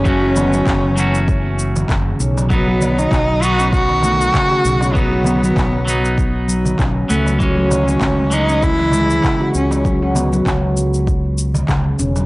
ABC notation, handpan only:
X:1
M:4/4
L:1/16
Q:"Swing 16ths" 1/4=98
K:Bmix
V:1 name="Handpan" clef=bass
F, F B, F, z8 C,2 C F, | F, F, z4 z C z D, A,2 C, F2 C | F, F B, F, z6 F, z C z A, F, | F, F, z4 z C z E, G,2 C, F2 C |
F, F B, F, z8 C,2 C F, |]